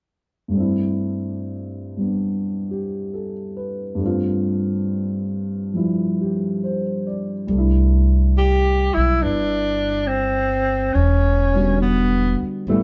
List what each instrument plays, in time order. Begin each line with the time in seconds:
0.48 grand piano G2 G3
0.53 grand piano A3 C4
0.58 grand piano D4 E4
1.97 grand piano G3 B3 D4
2.71 grand piano G4
3.14 grand piano A4
3.57 grand piano B4
3.95 grand piano G2 G3
4.00 grand piano A3 C4
4.06 grand piano F4
5.74 grand piano F3 G3 E4
6.21 grand piano G4
6.64 grand piano C5
7.07 grand piano D5
7.47 upright bass C2, grand piano G3 A3
7.55 grand piano D4 E4
8.37 tenor saxophone G4
8.94 upright bass B1, tenor saxophone E4
9.22 upright bass G1, tenor saxophone D4, grand piano E4 B4
10.07 tenor saxophone C4
10.94 upright bass E1, tenor saxophone C#4
11.54 grand piano D3 G3 B3 F#4
11.81 tenor saxophone B3
12.42 muted upright bass stroke
12.67 upright bass A1, grand piano G3 B3 C#4 E4, tenor saxophone A3